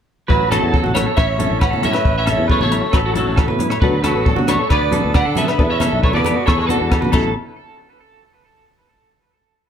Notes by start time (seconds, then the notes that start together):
0.28 A1 F#3 C#4 E4 F#4 B4, kick
0.51 F#3 F#4 A4, cross-stick, closed hi-hat, low conga, low agogo
0.62 E2 C#4 E4
0.72 F#3 C#4 E4 A4, kick
0.83 A1 F#4, high conga
0.94 F#3 A3 C#4 E4 A4 C#5, cross-stick, closed hi-hat, low conga, low agogo
1.06 A4
1.16 A1 C#4 C#5 E5, kick, cross-stick, low agogo
1.39 F#3 C#4 E4 A4, closed hi-hat, low conga
1.50 A1 C#4 E4
1.60 C#4 B4 C#5 F#5, kick, cross-stick, low agogo
1.71 A2 A4, high conga
1.82 F#3 C#4 E4 C#5 E5, closed hi-hat, low conga
1.92 B4, cross-stick, low agogo
2.05 A1 B4, kick
2.18 C#4 C#5 E5
2.26 A4, cross-stick, closed hi-hat, low conga, low agogo
2.37 E2 C#4 E4
2.48 F#3 A3 C#4 A4 B4 C#5, muted clean electric guitar stroke, kick
2.60 A1 A3 A4 C#5, high conga
2.71 F#3 C#4 E4, closed hi-hat, low agogo
2.81 muted clean electric guitar stroke
2.91 A1 F#4 A4 B4, kick, cross-stick, low agogo
2.96 F#3
3.05 F#3 F#4 A4
3.14 F#3 C#4 E4 F#4 A4, muted clean electric guitar stroke, closed hi-hat, low conga
3.26 A1 C#4 E4
3.36 A4, kick, cross-stick, low agogo
3.48 A2 B4, high conga
3.59 F#3 C#4 E4, closed hi-hat, low conga
3.70 C#5, cross-stick, low agogo
3.80 D2 F#3 B3 D4 F#4 A4 B4, kick
4.03 F#3 F#4 A4 B4, cross-stick, closed hi-hat, low conga, low agogo
4.15 A1 B3 A4
4.25 F#3 B3 D4 A4, kick
4.36 D2 F#4, high conga
4.47 F#3 A3 B3 D4 A4 C#5, cross-stick, closed hi-hat, low conga, low agogo
4.59 A4
4.70 D2 B3 B4 D5, kick, cross-stick, low agogo
4.91 F#3 B3 D4 A4, closed hi-hat, low conga
5.04 D2 B3 D4 A4
5.14 D4 B4 D5 F#5, kick, cross-stick, low agogo
5.25 D3 A4
5.35 F#3 B3 D4 A4 B4 E5, closed hi-hat, low conga
5.48 B4, cross-stick, low agogo
5.58 E2 B3 D4 A4 B4, kick
5.70 C#4 C#5 E5
5.80 A4, cross-stick, closed hi-hat, high conga, low conga, low agogo
5.92 B1 D4 A4
6.02 A3 B3 D4 A4 B4 C#5, kick
6.13 E2 B3 A4 B4 D5, high conga
6.24 B3, muted clean electric guitar stroke, closed hi-hat, low conga, low agogo
6.36 F#4
6.46 E2 A3 A4 C#5, kick, cross-stick, low agogo
6.57 G#3 G#4 B4
6.61 A3 G#4 C#5
6.66 G#3 B3 F#4 A4 B4, closed hi-hat, low conga
6.70 E3 D4 A4
6.80 E2 D4 A4
6.90 A4, kick, cross-stick, low agogo
7.01 A#1 B4, high conga
7.12 A1 F#3 C#4 E4 A4, kick, crash, high conga, low agogo